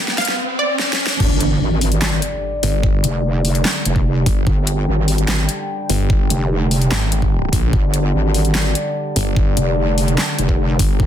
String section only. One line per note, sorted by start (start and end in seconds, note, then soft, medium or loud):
0.00 0.35 D3 medium
0.00 0.35 G3 medium
0.00 0.35 G4 medium
0.00 0.35 D5 medium
1.20 11.06 D3 medium
1.20 11.06 G3 medium
1.20 11.06 G4 medium
1.20 4.46 D5 medium
4.47 7.72 G5 medium
7.73 10.99 D5 medium
11.00 11.06 A#4 medium